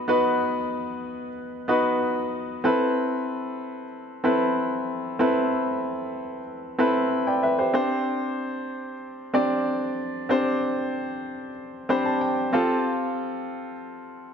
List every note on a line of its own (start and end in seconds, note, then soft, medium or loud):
0.00 0.08 B3 medium
0.00 0.08 D#4 medium
0.00 0.09 F#4 medium
0.00 0.09 B4 medium
0.08 1.27 B3 medium
0.08 1.28 D#4 medium
0.08 1.28 F#4 medium
0.08 1.28 B4 medium
1.68 2.58 B3 medium
1.68 2.58 D#4 medium
1.68 2.58 F#4 medium
1.68 2.58 B4 medium
2.64 3.83 C4 medium
2.64 3.83 E4 medium
2.64 3.84 A4 medium
2.64 3.84 B4 loud
4.24 5.13 C4 medium
4.24 5.13 E4 medium
4.24 5.13 A4 medium
4.24 5.14 B4 medium
5.19 6.38 C4 medium
5.19 6.39 E4 medium
5.19 6.39 A4 medium
5.19 6.39 B4 medium
6.79 7.68 C4 medium
6.79 7.68 E4 medium
6.79 7.11 A4 medium
6.79 7.11 B4 medium
7.27 7.42 D5 medium
7.27 7.42 G5 medium
7.43 7.58 B4 medium
7.43 7.58 E5 medium
7.59 7.73 G4 medium
7.59 7.73 C5 medium
7.73 8.93 C4 medium
7.73 8.93 D4 medium
7.73 8.94 G4 medium
7.73 8.94 C5 medium
9.34 10.23 C4 medium
9.34 10.24 D4 medium
9.34 10.24 G4 medium
9.34 10.24 D5 medium
10.29 11.49 C4 medium
10.29 11.49 D4 medium
10.29 11.49 G4 medium
10.29 11.49 C5 loud
11.89 12.51 C4 medium
11.89 12.53 D4 medium
11.89 12.52 G4 medium
11.89 12.54 C5 loud
11.89 12.05 B5 medium
12.05 12.20 A5 medium
12.21 12.51 G5 medium
12.53 13.72 C4 medium
12.53 13.72 F4 medium
12.53 13.73 G4 medium
12.53 13.73 A4 loud
12.53 12.83 F5 medium